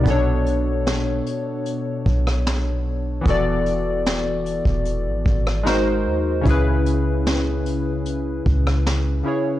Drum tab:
HH |x-x-x-x-x---x---|x-x-x-x-x---x---|x-x-x-x-x---x---|
SD |----o------ro---|----o------ro---|----o------ro---|
BD |o---------o-----|o------o--o-----|o---------o-----|